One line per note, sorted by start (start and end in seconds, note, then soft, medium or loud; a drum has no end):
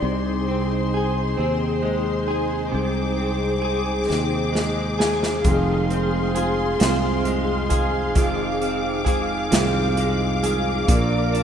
0.00 1.34 C2 medium
0.00 2.71 C3 medium
0.00 1.82 D#4 soft
0.00 10.84 D#4 soft
0.00 0.12 G4 medium
0.00 10.84 G#4 medium
0.00 5.40 C5 medium
0.00 0.12 D5 medium
0.00 2.69 C6 medium
0.48 1.37 C4 soft
0.94 2.27 G#4 medium
1.37 2.70 D#2 medium
1.37 3.17 C4 medium
1.82 4.52 G#3 soft
2.28 3.62 G#4 medium
2.72 4.06 C2 medium
2.72 5.44 C3 medium
2.72 5.42 D6 medium
3.18 4.07 C4 soft
3.62 4.99 G#4 medium
4.08 5.41 D#2 medium
4.08 5.91 C4 medium
4.08 snare soft
4.53 7.25 G#3 soft
4.53 snare medium
4.99 6.34 G#4 medium
4.99 snare medium
5.23 snare medium
5.44 6.77 F1 medium
5.44 6.35 F2 medium
5.44 8.14 F2 medium
5.44 6.35 C3 medium
5.44 6.33 D#3 medium
5.44 6.34 G#3 medium
5.44 6.35 C4 medium
5.44 6.36 F4 medium
5.44 11.43 F5 medium
5.44 8.13 C6 medium
5.44 kick loud
5.44 closed hi-hat medium
5.90 6.78 C4 soft
5.90 closed hi-hat soft
6.35 6.80 D#3 medium
6.35 6.80 G#3 medium
6.35 6.79 C4 medium
6.35 6.79 F4 medium
6.35 7.68 G#4 medium
6.35 closed hi-hat medium
6.79 8.16 C2 medium
6.79 7.72 F2 soft
6.79 7.72 C3 medium
6.79 7.71 D#3 medium
6.79 7.70 G#3 medium
6.79 8.60 C4 medium
6.79 7.70 C4 medium
6.79 7.70 F4 medium
6.79 snare loud
6.79 closed hi-hat medium
7.25 9.96 G#3 soft
7.25 closed hi-hat medium
7.70 8.15 D#3 soft
7.70 8.16 G#3 soft
7.70 8.15 C4 soft
7.70 8.16 F4 soft
7.70 9.04 G#4 medium
7.70 kick medium
7.70 closed hi-hat medium
8.15 9.48 F1 medium
8.15 10.88 F2 medium
8.15 9.07 F2 medium
8.15 9.07 C3 medium
8.15 9.05 D#3 medium
8.15 9.05 G#3 medium
8.15 9.06 C4 medium
8.15 9.08 F4 medium
8.15 11.43 D6 medium
8.15 kick loud
8.15 closed hi-hat medium
8.61 9.50 C4 medium
8.61 closed hi-hat soft
9.05 9.51 D#3 medium
9.05 9.50 G#3 medium
9.05 9.50 C4 medium
9.05 9.50 F4 medium
9.05 10.42 G#4 medium
9.05 kick medium
9.05 closed hi-hat medium
9.51 10.84 C2 medium
9.51 10.43 F2 medium
9.51 10.43 C3 medium
9.51 10.43 D#3 medium
9.51 10.42 G#3 medium
9.51 10.41 C4 medium
9.51 10.97 C4 medium
9.51 10.41 F4 medium
9.51 snare loud
9.51 closed hi-hat medium
9.97 10.97 G#3 medium
9.97 closed hi-hat medium
10.42 10.88 D#3 soft
10.42 10.88 G#3 soft
10.42 10.88 C4 medium
10.42 10.88 F4 soft
10.42 10.98 G#4 medium
10.42 closed hi-hat medium
10.87 11.43 A#1 medium
10.87 11.43 A#2 medium
10.87 11.43 F3 medium
10.87 11.43 A#3 medium
10.87 11.43 D4 medium
10.87 11.43 F4 medium
10.87 11.43 A#4 medium
10.87 11.43 D5 medium
10.87 kick loud
10.87 closed hi-hat medium
11.33 11.43 D4 medium
11.33 closed hi-hat soft